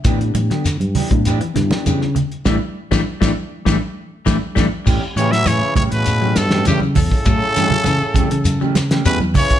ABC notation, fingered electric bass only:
X:1
M:4/4
L:1/16
Q:1/4=100
K:Amix
V:1 name="Fingered electric bass" clef=bass
A,,2 A,, D,2 G,, z A,,2 z G,, z C,2 z2 | A,,, z2 A,,, z A,,, z2 A,,, z3 A,,, z A,,, z | A,, z A,,2 A,, z A,, A,,3 G,,2 C,2 E,, z | A,, z G,, z C, z C, C,4- C, E,,2 z2 |]